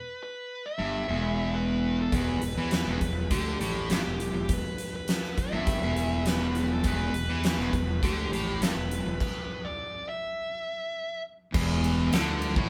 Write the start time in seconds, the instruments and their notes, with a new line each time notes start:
Already playing: lead electric guitar B4
0.23 lead electric guitar B4
0.66 lead electric guitar E5
0.79 fingered electric bass G1, distorted electric guitar G2
1.08 fingered electric bass E1, distorted electric guitar E2
1.55 lead electric guitar B4
2.01 lead electric guitar A4
2.12 fingered electric bass E1, distorted electric guitar E2, lead electric guitar B4, kick, closed hi-hat
2.41 fingered electric bass E1, distorted electric guitar E2, closed hi-hat
2.56 fingered electric bass E2, distorted electric guitar E3
2.71 lead electric guitar B4, snare, closed hi-hat
2.86 fingered electric bass E1, distorted electric guitar E2
3.01 fingered electric bass E1, distorted electric guitar E2, kick, closed hi-hat
3.31 fingered electric bass D2, distorted electric guitar D3, lead electric guitar G4, kick, closed hi-hat
3.60 fingered electric bass A1, distorted electric guitar A2, closed hi-hat
3.89 fingered electric bass G1, distorted electric guitar G2, lead electric guitar G4, snare, closed hi-hat
4.04 fingered electric bass E1, distorted electric guitar E2
4.20 closed hi-hat
4.33 fingered electric bass E1, distorted electric guitar E2
4.49 kick, closed hi-hat
4.53 lead electric guitar B4
4.78 closed hi-hat
4.96 lead electric guitar B4
5.08 snare, closed hi-hat
5.24 snare
5.38 lead electric guitar E5, kick, closed hi-hat
5.52 fingered electric bass G1, distorted electric guitar G2
5.67 kick, closed hi-hat
5.82 fingered electric bass E1, distorted electric guitar E2
5.96 closed hi-hat
6.26 lead electric guitar B4, snare, closed hi-hat
6.55 closed hi-hat
6.74 lead electric guitar A4
6.83 fingered electric bass E1, distorted electric guitar E2, lead electric guitar B4, kick, closed hi-hat
7.14 fingered electric bass E1, distorted electric guitar E2, closed hi-hat
7.27 fingered electric bass E2, distorted electric guitar E3
7.44 lead electric guitar B4, snare, closed hi-hat
7.58 fingered electric bass E1, distorted electric guitar E2, snare
7.73 fingered electric bass E1, distorted electric guitar E2, kick, closed hi-hat
8.03 fingered electric bass D2, distorted electric guitar D3, lead electric guitar G4, kick, closed hi-hat
8.31 fingered electric bass A1, distorted electric guitar A2, closed hi-hat
8.61 fingered electric bass G1, distorted electric guitar G2, lead electric guitar B4, snare, closed hi-hat
8.77 fingered electric bass E1, distorted electric guitar E2
8.91 closed hi-hat
9.06 fingered electric bass E1, distorted electric guitar E2
9.20 lead electric guitar B4, kick, crash
9.65 lead electric guitar D5
10.09 lead electric guitar E5
11.52 fingered electric bass E1, distorted electric guitar E2, string machine G#3 F4 C5, kick, crash
11.71 string machine G3 E4 B4
11.84 ride
12.12 fingered electric bass D2, distorted electric guitar D3, snare, ride
12.42 ride
12.56 fingered electric bass A1, distorted electric guitar A2, kick